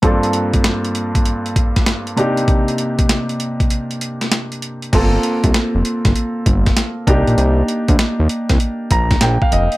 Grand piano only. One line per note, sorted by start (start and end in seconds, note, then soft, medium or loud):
0.02 2.13 G2 medium
0.02 2.13 A#3 medium
0.02 2.13 C4 medium
0.02 2.14 D4 medium
0.02 2.14 F4 medium
0.02 2.14 A4 medium
2.16 4.58 C3 medium
2.16 4.58 A#3 medium
2.16 4.58 D4 medium
2.16 4.59 D#4 medium
2.16 4.59 G4 medium
4.93 7.03 A#3 medium
4.93 7.03 C4 medium
4.93 7.04 F4 medium
4.93 7.04 A4 medium
7.07 9.48 A#3 medium
7.07 9.48 D4 medium
7.07 9.49 D#4 medium
7.07 9.49 G4 medium
8.92 9.20 A#5 medium
9.22 9.41 G5 medium
9.42 9.52 F5 medium
9.53 9.77 D#5 medium